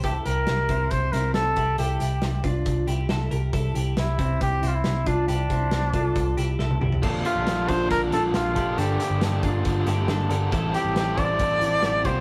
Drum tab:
CC |----------------|----------------|----------------|----------------|
HH |x-x-x-x-x-x-x-x-|x-x-x-x-x-x-x-x-|x-x-x-x-x-x-x-x-|x-x-x-x-x-x-----|
SD |----o-----o-o---|----o-------o---|----o-------o---|----o-------o---|
T1 |----------------|----------------|----------------|-------------o--|
T2 |----------------|----------------|----------------|--------------o-|
FT |----------------|----------------|----------------|---------------o|
BD |o-----o-o-----o-|------o-o-------|o-----o-o-----o-|--o---o-o-------|

CC |x---------------|----------------|----------------|
HH |--x-x-x-x-x-x-x-|x-x-x-x-x-x-x-x-|x-x-x-x-x-x-x-x-|
SD |----o-----o-o---|----o-----o-o---|----o-------o---|
T1 |----------------|----------------|----------------|
T2 |----------------|----------------|----------------|
FT |----------------|----------------|----------------|
BD |o-----o-o-----o-|------o-o-------|o-----o-o-----o-|